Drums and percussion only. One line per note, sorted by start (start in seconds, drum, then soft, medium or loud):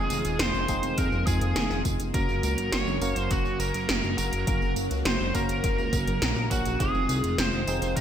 0.10 closed hi-hat medium
0.10 tambourine medium
0.25 closed hi-hat medium
0.25 tambourine soft
0.39 snare loud
0.39 closed hi-hat loud
0.39 tambourine soft
0.54 tambourine soft
0.68 kick medium
0.68 closed hi-hat medium
0.68 tambourine medium
0.83 closed hi-hat medium
0.83 tambourine soft
0.98 kick loud
0.98 closed hi-hat loud
0.98 tambourine soft
1.12 tambourine soft
1.27 kick loud
1.27 closed hi-hat medium
1.27 tambourine medium
1.41 closed hi-hat medium
1.41 tambourine soft
1.56 snare loud
1.56 closed hi-hat medium
1.56 tambourine soft
1.70 snare soft
1.70 tambourine soft
1.85 kick medium
1.85 closed hi-hat medium
1.85 tambourine medium
2.00 closed hi-hat medium
2.00 tambourine soft
2.14 kick loud
2.14 closed hi-hat loud
2.14 tambourine soft
2.29 tambourine soft
2.43 closed hi-hat medium
2.43 tambourine medium
2.58 closed hi-hat medium
2.58 tambourine soft
2.72 snare loud
2.72 closed hi-hat loud
2.72 tambourine soft
2.87 tambourine soft
3.02 closed hi-hat medium
3.02 tambourine medium
3.16 closed hi-hat medium
3.16 tambourine soft
3.31 kick loud
3.31 closed hi-hat loud
3.31 tambourine soft
3.45 tambourine soft
3.60 closed hi-hat medium
3.60 tambourine medium
3.74 closed hi-hat medium
3.74 tambourine soft
3.89 snare loud
3.89 closed hi-hat medium
3.89 tambourine soft
4.03 tambourine soft
4.18 closed hi-hat medium
4.18 tambourine medium
4.33 closed hi-hat medium
4.33 tambourine soft
4.47 kick loud
4.47 closed hi-hat medium
4.47 tambourine soft
4.62 tambourine soft
4.76 closed hi-hat medium
4.76 tambourine medium
4.91 closed hi-hat medium
4.91 tambourine soft
5.05 snare loud
5.05 closed hi-hat loud
5.05 tambourine soft
5.20 tambourine soft
5.35 kick medium
5.35 closed hi-hat medium
5.35 tambourine medium
5.49 closed hi-hat medium
5.49 tambourine soft
5.64 kick loud
5.64 closed hi-hat loud
5.64 tambourine soft
5.78 tambourine soft
5.93 kick loud
5.93 closed hi-hat medium
5.93 tambourine medium
6.07 closed hi-hat medium
6.07 tambourine soft
6.22 snare loud
6.22 closed hi-hat medium
6.22 tambourine soft
6.36 snare soft
6.36 tambourine soft
6.51 kick medium
6.51 closed hi-hat medium
6.51 tambourine medium
6.65 closed hi-hat medium
6.65 tambourine soft
6.80 kick loud
6.80 closed hi-hat medium
6.80 tambourine soft
6.95 tambourine soft
7.09 closed hi-hat medium
7.09 tambourine medium
7.24 closed hi-hat medium
7.24 tambourine soft
7.38 snare loud
7.38 closed hi-hat medium
7.38 tambourine soft
7.53 tambourine soft
7.67 closed hi-hat medium
7.67 tambourine medium
7.82 closed hi-hat medium
7.82 tambourine soft
7.97 kick loud
7.97 closed hi-hat medium
7.97 tambourine soft